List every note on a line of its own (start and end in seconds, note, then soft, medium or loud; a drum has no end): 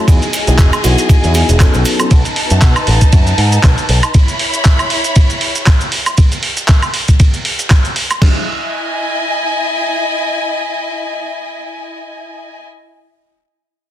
0.07 0.18 E2 loud
0.07 0.22 F#3 medium
0.07 0.23 B3 medium
0.07 0.23 D#4 medium
0.07 0.23 E4 medium
0.07 0.23 G#4 medium
0.07 1.84 G#4 medium
0.07 1.84 D#5 medium
0.07 1.84 G#5 medium
0.07 kick loud
0.07 closed hi-hat medium
0.07 ride medium
0.07 cabasa medium
0.22 closed hi-hat soft
0.22 cabasa soft
0.33 open hi-hat loud
0.33 cabasa loud
0.46 0.56 B1 medium
0.46 0.69 F#3 medium
0.46 0.69 B3 medium
0.46 0.69 D#4 medium
0.46 0.69 E4 medium
0.46 0.69 G#4 medium
0.46 closed hi-hat soft
0.46 cabasa medium
0.46 cabasa soft
0.58 0.69 E1 medium
0.58 kick loud
0.58 clap loud
0.58 closed hi-hat medium
0.58 ride medium
0.58 cabasa medium
0.73 closed hi-hat soft
0.73 cabasa soft
0.73 high woodblock medium
0.83 0.95 B1 medium
0.83 1.20 F#3 medium
0.83 1.20 B3 medium
0.83 1.20 D#4 medium
0.83 1.20 E4 medium
0.83 1.20 F#4 medium
0.83 open hi-hat loud
0.83 cabasa medium
0.98 closed hi-hat medium
0.98 cabasa soft
0.98 cabasa medium
1.09 muted picked electric bass stroke soft
1.09 kick loud
1.09 closed hi-hat medium
1.09 ride medium
1.09 cabasa medium
1.23 1.42 E2 medium
1.23 1.32 F#3 medium
1.23 1.33 B3 medium
1.23 1.33 D#4 medium
1.23 1.33 E4 medium
1.23 1.33 G#4 medium
1.23 closed hi-hat soft
1.23 cabasa soft
1.34 1.57 F#3 medium
1.34 1.57 B3 medium
1.34 1.57 D#4 medium
1.34 1.57 E4 medium
1.34 1.58 G#4 medium
1.34 open hi-hat loud
1.34 cabasa loud
1.49 1.67 E1 medium
1.49 closed hi-hat medium
1.49 cabasa soft
1.49 cabasa medium
1.59 1.96 F#3 loud
1.59 1.96 B3 medium
1.59 1.96 C#4 medium
1.59 1.97 D#4 medium
1.59 1.97 A4 loud
1.59 kick loud
1.59 clap loud
1.59 closed hi-hat medium
1.59 ride medium
1.59 cabasa medium
1.59 high woodblock medium
1.74 1.83 B1 medium
1.74 closed hi-hat soft
1.74 cabasa soft
1.85 4.12 D#4 medium
1.85 4.13 B4 medium
1.85 4.12 A5 medium
1.85 open hi-hat loud
1.85 cabasa loud
1.99 2.09 F#3 medium
1.99 2.09 B3 medium
1.99 2.09 C#4 medium
1.99 2.09 D#4 medium
1.99 2.09 A4 medium
1.99 closed hi-hat soft
1.99 cabasa soft
1.99 cabasa medium
1.99 high woodblock medium
2.11 2.22 B1 loud
2.11 kick loud
2.11 closed hi-hat medium
2.11 ride medium
2.11 cabasa medium
2.25 closed hi-hat soft
2.25 cabasa soft
2.36 open hi-hat loud
2.50 2.59 F#2 medium
2.50 closed hi-hat medium
2.50 cabasa medium
2.62 2.72 B2 medium
2.62 kick loud
2.62 clap loud
2.62 closed hi-hat medium
2.62 ride medium
2.62 cabasa medium
2.76 closed hi-hat soft
2.76 cabasa soft
2.76 high woodblock medium
2.87 2.98 A1 medium
2.87 open hi-hat loud
3.01 kick medium
3.01 closed hi-hat medium
3.01 cabasa medium
3.13 3.32 F#2 medium
3.13 kick loud
3.13 closed hi-hat medium
3.13 ride medium
3.13 cabasa medium
3.27 closed hi-hat soft
3.27 cabasa soft
3.38 3.57 G#2 medium
3.38 open hi-hat loud
3.52 closed hi-hat medium
3.52 cabasa medium
3.63 3.74 B1 loud
3.63 kick loud
3.63 clap loud
3.63 closed hi-hat medium
3.63 ride medium
3.63 cabasa medium
3.63 high woodblock medium
3.78 closed hi-hat soft
3.78 cabasa soft
3.89 3.99 B1 medium
3.89 open hi-hat loud
4.03 closed hi-hat medium
4.03 cabasa medium
4.03 high woodblock medium
4.14 6.16 E4 medium
4.14 6.16 C#5 medium
4.14 6.16 B5 loud
4.14 kick loud
4.14 closed hi-hat medium
4.14 ride medium
4.14 cabasa medium
4.28 closed hi-hat soft
4.28 cabasa soft
4.39 open hi-hat loud
4.54 closed hi-hat medium
4.54 cabasa medium
4.65 kick loud
4.65 clap loud
4.65 closed hi-hat medium
4.65 ride medium
4.65 cabasa medium
4.79 closed hi-hat soft
4.79 cabasa soft
4.79 high woodblock medium
4.90 open hi-hat loud
5.04 closed hi-hat medium
5.04 cabasa medium
5.16 kick loud
5.16 closed hi-hat medium
5.16 ride medium
5.16 cabasa medium
5.30 closed hi-hat soft
5.30 cabasa soft
5.41 open hi-hat loud
5.56 closed hi-hat medium
5.56 cabasa medium
5.66 kick loud
5.66 clap loud
5.66 closed hi-hat medium
5.66 ride medium
5.66 cabasa medium
5.66 high woodblock medium
5.81 closed hi-hat soft
5.81 cabasa soft
5.92 open hi-hat loud
6.06 closed hi-hat medium
6.06 cabasa medium
6.06 high woodblock medium
6.18 kick loud
6.18 closed hi-hat medium
6.18 ride medium
6.18 cabasa medium
6.32 closed hi-hat soft
6.32 cabasa soft
6.43 open hi-hat loud
6.57 closed hi-hat medium
6.57 cabasa medium
6.68 kick loud
6.68 clap loud
6.68 closed hi-hat medium
6.68 ride medium
6.68 cabasa medium
6.82 closed hi-hat soft
6.82 cabasa soft
6.82 high woodblock medium
6.94 open hi-hat loud
7.08 kick medium
7.08 closed hi-hat medium
7.08 cabasa medium
7.20 kick loud
7.20 closed hi-hat medium
7.20 ride medium
7.20 cabasa medium
7.34 closed hi-hat soft
7.34 cabasa soft
7.45 open hi-hat loud
7.59 closed hi-hat medium
7.59 cabasa medium
7.70 kick loud
7.70 clap loud
7.70 closed hi-hat medium
7.70 ride medium
7.70 cabasa medium
7.70 high woodblock medium
7.85 closed hi-hat soft
7.85 cabasa soft
7.96 open hi-hat loud
8.11 closed hi-hat medium
8.11 cabasa medium
8.11 high woodblock medium
8.21 12.63 E4 medium
8.21 12.62 D#5 medium
8.21 12.62 G#5 medium
8.21 kick loud
8.21 snare loud
8.21 crash medium